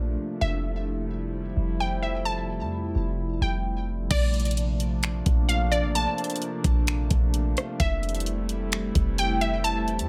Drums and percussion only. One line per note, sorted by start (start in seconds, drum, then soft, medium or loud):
4.11 kick loud
4.11 closed hi-hat medium
4.11 crash loud
4.34 closed hi-hat soft
4.40 closed hi-hat medium
4.45 closed hi-hat medium
4.51 closed hi-hat medium
4.57 closed hi-hat medium
4.80 closed hi-hat medium
5.03 finger snap loud
5.03 closed hi-hat medium
5.26 kick medium
5.26 closed hi-hat medium
5.49 closed hi-hat medium
5.72 closed hi-hat medium
5.95 closed hi-hat medium
6.18 closed hi-hat soft
6.24 closed hi-hat medium
6.30 closed hi-hat medium
6.36 closed hi-hat medium
6.42 closed hi-hat medium
6.64 kick medium
6.64 closed hi-hat medium
6.87 finger snap loud
6.87 closed hi-hat medium
7.11 kick medium
7.11 closed hi-hat medium
7.34 closed hi-hat medium
7.57 cross-stick loud
7.57 closed hi-hat medium
7.80 kick loud
7.80 closed hi-hat medium
8.03 closed hi-hat soft
8.09 closed hi-hat medium
8.15 closed hi-hat medium
8.20 closed hi-hat medium
8.26 closed hi-hat medium
8.49 closed hi-hat medium
8.72 finger snap loud
8.72 closed hi-hat medium
8.95 kick medium
8.95 closed hi-hat medium
9.18 closed hi-hat medium
9.41 closed hi-hat medium
9.64 closed hi-hat medium
9.88 closed hi-hat soft
9.99 closed hi-hat medium